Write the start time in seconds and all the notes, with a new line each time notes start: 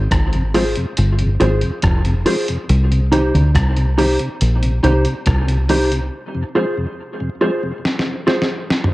Already playing: G#1
0.11 G#1, kick, cross-stick, closed hi-hat
0.33 F2 C3, closed hi-hat
0.54 F3 G#3 C4 F4 G#4 C5, open hi-hat
0.76 F2 C3, closed hi-hat
0.97 G1, closed hi-hat
1.19 F2 C3, closed hi-hat
1.40 G#1 F3 G#3 C4 F4 G#4 C5, closed hi-hat
1.61 F2 C3, closed hi-hat
1.82 F1, kick, cross-stick, closed hi-hat
2.05 F2 C3, closed hi-hat
2.26 F3 G#3 C4 F4 G#4 C5, open hi-hat
2.48 F2 C3, closed hi-hat
2.69 C2, closed hi-hat
2.92 C3, closed hi-hat
3.12 D#3 G3 C4 D#4 G4 C5, closed hi-hat
3.34 D2 C3, closed hi-hat
3.55 C2, kick, cross-stick, closed hi-hat
3.77 C3, closed hi-hat
3.98 D#3 G3 C4 D#4 G4 C5, open hi-hat
4.19 C3, closed hi-hat
4.41 A#1, closed hi-hat
4.63 C3, closed hi-hat
4.83 C2 D#3 G3 C4 D#4 G4 C5, closed hi-hat
5.05 C3, closed hi-hat
5.26 C2, kick, cross-stick, closed hi-hat
5.48 C3, closed hi-hat
5.68 D#3 G3 C4 D#4 G4 C5, open hi-hat
5.91 C3, closed hi-hat
6.35 F2 C3
6.55 F3 G#3 C4 F4 G#4 C5
6.77 F2 C3
7.20 F2 C3
7.41 F3 G#3 C4 F4 G#4 C5
7.63 F2 C3
7.85 snare
7.99 snare
8.06 F2 C3
8.26 F3 G#3 C4 F4 G#4 C5, snare
8.42 snare
8.49 F2 C3
8.70 snare
8.84 mid tom